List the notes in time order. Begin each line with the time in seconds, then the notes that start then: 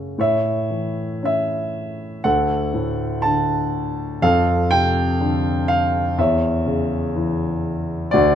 Already playing: F#2 C#3 C#4
0.18 A2 C#5 E5
0.70 E3
1.23 C#4 E5
2.24 D2 A4 F#5
2.74 A2
3.22 D3 A5
4.22 F2 A4 F5
4.71 C3 G5
5.21 D3
5.68 F5
6.18 E2 C#5 E5
6.66 C#3
7.16 E3
8.11 D2 F#4 D5